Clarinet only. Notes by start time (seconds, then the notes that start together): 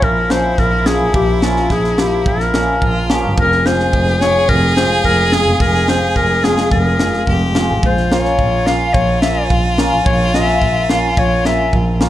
0.04 A#4
0.31 C5
0.59 A#4
0.87 G#4
1.15 G4
1.44 F4
1.71 G#4
1.99 G4
2.27 A#4
3.40 A#4
3.66 C5
4.21 C#5
4.49 A#4
4.77 C5
5.05 A#4
5.33 G#4
5.62 A#4
5.89 C5
6.17 A#4
6.44 G#4
6.72 A#4
7.86 C5
8.13 C5
8.24 C#5
8.67 F5
8.94 C#5
9.22 E5
10.06 C#5
10.35 E5
10.90 F5
11.19 C#5
11.46 E5